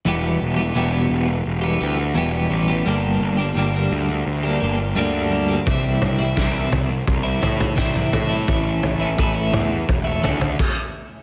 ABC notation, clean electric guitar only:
X:1
M:4/4
L:1/16
Q:1/4=86
K:Em
V:1 name="Clean electric guitar"
[E,,B,,E,G,B,G]3 [E,G,B,G] [E,,B,,E,G,B,G] [E,G,B,G]4 [E,G,B,G] [E,G,B,G]2 [E,,B,,E,G,B,G]2 [E,G,B,G] [E,G,B,G] | [G,,D,G,_B,DG]3 [G,B,DG] [G,,D,G,B,DG] [G,B,DG]4 [G,B,DG] [G,B,DG]2 [G,,D,G,B,DG]2 [G,B,DG] [G,B,DG] | [C,E,G,CE]3 [G,CE] [C,E,G,CE] [G,CE]4 [G,CE] [E,G,CE]2 [C,E,G,CE]2 [E,G,CE] [G,CE] | [A,,E,A,^CE]3 [A,CE] [A,,E,A,CE] [A,CE]4 [A,CE] [E,A,CE]2 z4 |]